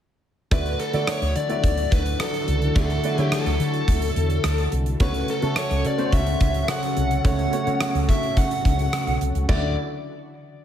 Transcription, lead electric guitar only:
0.52 0.78 B4 medium
0.80 1.09 A4 medium
1.08 1.36 C#5 medium
1.36 1.94 D5 loud
1.92 2.20 B4 medium
2.21 2.75 A4 medium
2.76 3.21 A4 medium
3.21 3.31 G4 medium
3.33 4.68 A4 medium
5.02 5.30 B4 medium
5.31 5.58 A4 medium
5.58 5.84 C#5 medium
5.87 6.14 D5 medium
6.14 6.69 E5 loud
6.70 7.25 F#5 medium
7.26 7.80 F#5 loud
7.82 7.89 F#5 medium
8.10 8.37 E5 medium
8.38 9.17 F#5 medium
9.50 9.76 D5 medium

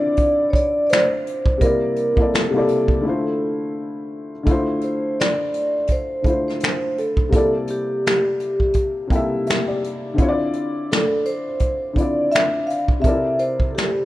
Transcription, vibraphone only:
0.00 0.45 D5 loud
0.50 0.55 C#5 medium
0.55 0.85 D5 loud
0.87 1.63 C5 loud
0.87 0.91 D5 medium
1.62 2.35 A#4 loud
2.34 3.72 A4 medium
4.84 5.20 C5 medium
5.20 5.93 D5 medium
5.92 6.47 C5 loud
6.48 6.99 C5 medium
6.99 7.34 A4 medium
7.35 7.50 A4 medium
7.71 8.06 G4 medium
8.08 9.80 G4 medium
10.92 11.27 A4 medium
11.26 11.99 C5 loud
11.98 12.34 D5 medium
12.32 12.69 E5 loud
12.67 12.83 F5 medium
13.02 13.40 E5 loud
13.39 13.70 C5 medium
13.71 13.76 A4 medium
13.75 14.05 G4 medium

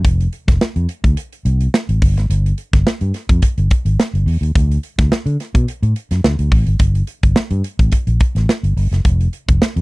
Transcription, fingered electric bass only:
0.04 0.26 F1 loud
0.48 0.57 F1 loud
0.61 muted fingered electric bass stroke soft
0.76 0.86 F2 medium
1.04 1.14 D2 medium
1.45 1.66 C2 medium
1.89 1.99 A1 medium
2.02 2.17 G1 medium
2.17 2.27 G#1 medium
2.30 2.51 G1 loud
2.73 2.83 G1 loud
2.86 muted fingered electric bass stroke soft
3.01 3.11 G2 loud
3.29 3.39 F2 medium
3.58 3.68 G1 medium
3.85 3.95 G#1 medium
4.14 4.24 G1 medium
4.26 4.38 E2 medium
4.41 4.51 D#2 medium
4.55 4.77 D2 loud
4.98 5.08 D2 medium
5.10 muted fingered electric bass stroke soft
5.26 5.36 D3 medium
5.55 5.64 B2 medium
5.83 5.93 A2 medium
6.11 6.21 F#2 medium
6.24 6.36 D2 loud
6.39 6.49 D2 medium
6.52 6.63 A1 medium
6.67 6.77 G#1 medium
6.80 7.01 G1 loud
7.23 7.33 G1 medium
7.36 muted fingered electric bass stroke soft
7.51 7.61 G2 loud
7.79 7.89 A1 medium
8.07 8.17 A#1 medium
8.35 8.45 A1 medium
8.63 8.74 G1 medium
8.77 8.88 G1 medium
8.91 9.02 F#1 medium
9.05 9.26 F1 loud
9.48 9.58 F1 medium
9.61 muted fingered electric bass stroke soft
9.76 9.81 F2 medium

